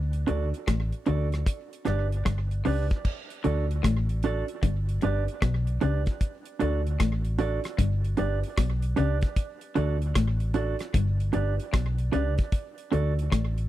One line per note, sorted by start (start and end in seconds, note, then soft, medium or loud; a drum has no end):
0.00 0.24 D2 loud
0.00 0.11 D3 medium
0.13 closed hi-hat soft
0.27 0.51 D2 loud
0.27 0.43 D3 medium
0.27 0.48 D4 medium
0.27 0.48 F#4 medium
0.27 0.48 A4 medium
0.27 0.49 D5 medium
0.27 closed hi-hat medium
0.54 closed hi-hat medium
0.67 0.91 A1 medium
0.67 0.83 A2 medium
0.67 kick loud
0.67 cross-stick loud
0.67 closed hi-hat loud
0.92 closed hi-hat soft
1.06 1.43 D2 medium
1.06 1.31 D3 medium
1.06 1.27 D4 medium
1.06 1.27 F#4 medium
1.06 1.28 A4 medium
1.06 1.28 D5 medium
1.06 closed hi-hat medium
1.32 cross-stick medium
1.32 closed hi-hat medium
1.46 kick loud
1.46 closed hi-hat medium
1.73 closed hi-hat medium
1.85 2.22 G1 loud
1.85 2.10 G2 medium
1.85 2.06 D4 medium
1.85 2.06 G4 medium
1.85 2.07 B4 medium
1.85 2.07 D5 medium
1.85 cross-stick medium
1.85 closed hi-hat medium
2.12 closed hi-hat medium
2.25 2.61 G1 medium
2.25 2.49 G2 medium
2.25 kick loud
2.25 cross-stick loud
2.25 closed hi-hat medium
2.51 closed hi-hat medium
2.65 2.89 C#2 medium
2.65 2.80 C#3 medium
2.65 2.85 D4 medium
2.65 2.86 G4 medium
2.65 2.86 B4 medium
2.65 2.86 D5 medium
2.65 open hi-hat medium
2.90 kick loud
2.90 closed hi-hat soft
3.05 kick loud
3.05 crash loud
3.30 closed hi-hat medium
3.44 3.80 D2 loud
3.44 3.68 D3 medium
3.44 3.64 D4 medium
3.44 3.65 F#4 medium
3.44 3.65 A4 medium
3.44 3.66 D5 medium
3.44 closed hi-hat medium
3.71 closed hi-hat medium
3.83 4.42 A1 loud
3.83 4.07 A2 medium
3.83 kick loud
3.83 cross-stick loud
3.83 closed hi-hat loud
4.09 closed hi-hat medium
4.23 4.44 D4 medium
4.23 4.44 F#4 medium
4.23 4.44 A4 medium
4.23 4.45 D5 loud
4.23 closed hi-hat medium
4.48 closed hi-hat medium
4.63 4.98 G1 loud
4.63 4.86 G2 medium
4.63 kick loud
4.63 closed hi-hat loud
4.89 closed hi-hat medium
5.01 5.26 G1 medium
5.01 5.17 G2 medium
5.01 5.23 D4 medium
5.01 5.23 G4 medium
5.01 5.23 B4 medium
5.01 5.24 D5 loud
5.01 closed hi-hat medium
5.28 closed hi-hat medium
5.42 5.77 B1 loud
5.42 5.66 B2 medium
5.42 kick loud
5.42 cross-stick loud
5.42 closed hi-hat medium
5.67 closed hi-hat medium
5.81 6.05 C#2 medium
5.81 5.97 C#3 medium
5.81 6.01 D4 medium
5.81 6.02 G4 medium
5.81 6.02 B4 medium
5.81 6.02 D5 medium
5.81 closed hi-hat medium
6.06 kick loud
6.06 closed hi-hat medium
6.21 kick loud
6.21 closed hi-hat medium
6.45 closed hi-hat medium
6.59 6.96 D2 loud
6.59 6.85 D3 medium
6.59 6.80 D4 medium
6.59 6.81 F#4 medium
6.59 6.81 A4 medium
6.59 6.81 D5 medium
6.59 closed hi-hat medium
6.87 closed hi-hat soft
7.00 7.58 A1 loud
7.00 7.23 A2 medium
7.00 kick loud
7.00 cross-stick loud
7.00 closed hi-hat loud
7.25 closed hi-hat medium
7.39 7.59 D4 medium
7.39 7.59 F#4 medium
7.39 7.60 A4 loud
7.39 7.60 D5 loud
7.39 closed hi-hat medium
7.64 cross-stick medium
7.64 closed hi-hat medium
7.78 8.14 G1 loud
7.78 8.02 G2 loud
7.78 kick loud
7.78 closed hi-hat loud
8.04 closed hi-hat medium
8.17 8.42 G1 medium
8.17 8.33 G2 medium
8.17 8.38 D4 medium
8.17 8.38 G4 medium
8.17 8.39 B4 medium
8.17 8.39 D5 loud
8.17 closed hi-hat medium
8.44 closed hi-hat medium
8.58 8.93 B1 loud
8.58 8.82 B2 medium
8.58 kick loud
8.58 cross-stick loud
8.58 closed hi-hat medium
8.82 closed hi-hat medium
8.96 9.21 C#2 loud
8.96 9.13 C#3 medium
8.96 9.17 D4 medium
8.96 9.17 G4 medium
8.96 9.18 B4 medium
8.96 9.18 D5 loud
8.96 closed hi-hat medium
9.21 kick loud
9.21 closed hi-hat medium
9.36 kick loud
9.36 closed hi-hat medium
9.61 closed hi-hat medium
9.75 10.12 D2 loud
9.75 10.00 D3 medium
9.75 9.96 D4 medium
9.75 9.96 F#4 medium
9.75 9.97 A4 medium
9.75 9.97 D5 loud
9.75 closed hi-hat medium
10.02 closed hi-hat medium
10.15 10.74 A1 loud
10.15 10.39 A2 medium
10.15 kick loud
10.15 cross-stick loud
10.15 closed hi-hat loud
10.40 closed hi-hat medium
10.54 10.75 D4 medium
10.54 10.75 F#4 medium
10.54 10.76 A4 medium
10.54 10.76 D5 medium
10.54 closed hi-hat medium
10.79 cross-stick medium
10.79 closed hi-hat medium
10.94 11.30 G1 loud
10.94 11.18 G2 loud
10.94 kick loud
10.94 closed hi-hat loud
11.20 closed hi-hat medium
11.33 11.57 G1 medium
11.33 11.49 G2 medium
11.33 11.54 D4 medium
11.33 11.54 G4 medium
11.33 11.54 B4 medium
11.33 11.55 D5 medium
11.33 closed hi-hat medium
11.60 closed hi-hat medium
11.73 12.09 B1 loud
11.73 11.97 B2 medium
11.73 kick loud
11.73 cross-stick loud
11.73 closed hi-hat medium
11.98 closed hi-hat medium
12.12 12.37 C#2 medium
12.12 12.28 C#3 medium
12.12 12.33 D4 medium
12.12 12.33 G4 medium
12.12 12.34 B4 medium
12.12 12.34 D5 loud
12.12 closed hi-hat medium
12.38 kick loud
12.38 closed hi-hat medium
12.52 kick loud
12.52 closed hi-hat medium
12.78 closed hi-hat medium
12.92 13.28 D2 loud
12.92 13.16 D3 medium
12.92 13.12 D4 medium
12.92 13.13 F#4 medium
12.92 13.13 A4 medium
12.92 13.13 D5 medium
12.92 closed hi-hat medium
13.19 closed hi-hat medium
13.32 13.69 A1 loud
13.32 13.55 A2 medium
13.32 kick loud
13.32 cross-stick loud
13.32 closed hi-hat loud
13.58 closed hi-hat medium